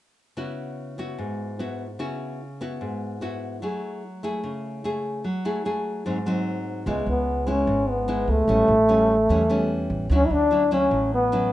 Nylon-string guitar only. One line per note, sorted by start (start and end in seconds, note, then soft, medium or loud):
0.37 1.16 C#3 medium
0.37 0.94 B3 soft
0.37 0.95 E4 soft
0.37 0.95 F#4 soft
0.98 1.55 B3 medium
0.98 1.56 E4 soft
0.98 1.56 F#4 medium
1.18 1.97 G#2 medium
1.59 1.85 B3 soft
1.59 1.85 E4 soft
1.59 1.86 F#4 medium
1.99 2.78 C#3 medium
1.99 2.40 B3 soft
1.99 2.40 E4 soft
1.99 2.40 F#4 soft
2.61 3.18 B3 medium
2.61 3.18 E4 soft
2.61 3.18 F#4 medium
2.81 3.60 G#2 medium
3.21 3.58 B3 soft
3.21 3.59 E4 soft
3.21 3.59 F#4 medium
3.62 4.41 F#3 medium
3.62 4.02 A3 soft
3.62 4.02 E4 soft
3.62 4.03 G#4 soft
4.23 4.80 A3 medium
4.23 4.81 E4 soft
4.23 4.81 G#4 medium
4.44 5.22 C#3 medium
4.84 5.24 A3 soft
4.84 5.24 E4 soft
4.84 5.24 G#4 medium
5.24 6.03 F#3 medium
5.45 5.62 A3 soft
5.45 5.62 E4 medium
5.45 5.62 G#4 medium
5.65 6.04 A3 soft
5.65 6.04 E4 soft
5.65 6.04 G#4 medium
6.06 6.84 G#2 medium
6.06 6.17 F#3 soft
6.06 6.17 C4 soft
6.06 6.18 D#4 medium
6.26 6.83 F#3 medium
6.26 6.83 C4 medium
6.26 6.84 D#4 medium
6.87 7.65 C#3 soft
6.87 7.44 G#3 soft
6.87 7.44 B3 soft
6.87 7.44 E4 soft
7.47 8.04 G#3 soft
7.47 8.04 B3 soft
7.47 8.05 E4 medium
7.67 8.46 G#2 soft
8.08 8.47 G#3 soft
8.08 8.47 B3 soft
8.08 8.47 E4 medium
8.48 9.27 A2 soft
8.48 8.74 G3 soft
8.48 8.74 B3 soft
8.48 8.75 C#4 medium
8.89 9.15 G3 soft
8.89 9.15 B3 soft
8.89 9.15 C#4 soft
9.30 10.09 E3 soft
9.30 9.41 G3 soft
9.30 9.42 B3 soft
9.30 9.42 C#4 medium
9.50 10.07 G3 medium
9.50 10.07 B3 medium
9.50 10.07 C#4 medium
10.11 10.89 D3 soft
10.11 10.48 F#3 soft
10.11 10.48 C#4 medium
10.11 10.48 E4 medium
10.51 10.62 F#3 soft
10.51 10.63 C#4 soft
10.51 10.63 E4 medium
10.71 11.28 F#3 medium
10.71 11.29 C#4 soft
10.71 11.29 E4 medium
10.91 11.52 A2 soft
11.32 11.52 F#3 medium
11.32 11.52 C#4 medium
11.32 11.52 E4 medium